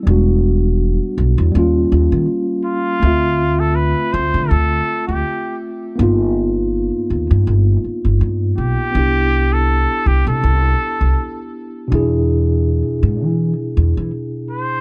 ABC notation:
X:1
M:4/4
L:1/16
Q:"Swing 16ths" 1/4=81
K:Ephr
V:1 name="Muted trumpet"
z12 z2 ^E2- | ^E3 A B2 c2 A3 G3 z2 | z12 z2 G2- | G3 A3 G A6- A z2 |
z12 z2 c2 |]
V:2 name="Tine electric piano"
[G,B,D^F]8 [G,^A,^C^E]8 | [A,CFe]16 | [^A,B,^DF]16 | [B,DEG]16 |
[B,,DE^G]16 |]
V:3 name="Upright bass" clef=bass
E,,,4- E,,, z B,,, E,, ^D,,2 D,, ^D, z4 | D,,4- D,, z D,, D, D,,2 z D,, z4 | G,,,4- G,,, z ^D,, G,, G,,,2 z G,,, G,,2 B,,, z | C,,4- C,, z C,, C, C,,2 z C,, z4 |
E,,4- E,, z ^G,, E,2 z E,, E, z4 |]